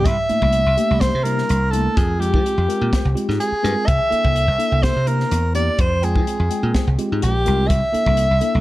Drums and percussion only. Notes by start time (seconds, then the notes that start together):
0.05 kick, closed hi-hat
0.29 closed hi-hat
0.42 kick
0.53 closed hi-hat
0.78 closed hi-hat
1.01 kick, snare, closed hi-hat
1.25 closed hi-hat
1.38 snare
1.49 closed hi-hat
1.73 closed hi-hat
1.97 kick, closed hi-hat
2.22 closed hi-hat
2.34 kick
2.46 closed hi-hat
2.70 closed hi-hat
2.93 kick, snare, closed hi-hat
3.17 closed hi-hat
3.30 snare
3.40 closed hi-hat
3.65 closed hi-hat
3.88 kick, closed hi-hat
4.12 closed hi-hat
4.25 kick
4.36 closed hi-hat
4.60 closed hi-hat
4.83 kick, snare, closed hi-hat
5.07 closed hi-hat
5.20 snare
5.31 closed hi-hat
5.55 closed hi-hat
5.79 kick, closed hi-hat
6.03 closed hi-hat
6.16 kick
6.27 closed hi-hat
6.51 closed hi-hat
6.74 kick, snare, closed hi-hat
6.99 closed hi-hat
7.22 closed hi-hat
7.46 closed hi-hat
7.70 kick, closed hi-hat
7.94 closed hi-hat
8.06 kick
8.17 closed hi-hat
8.41 closed hi-hat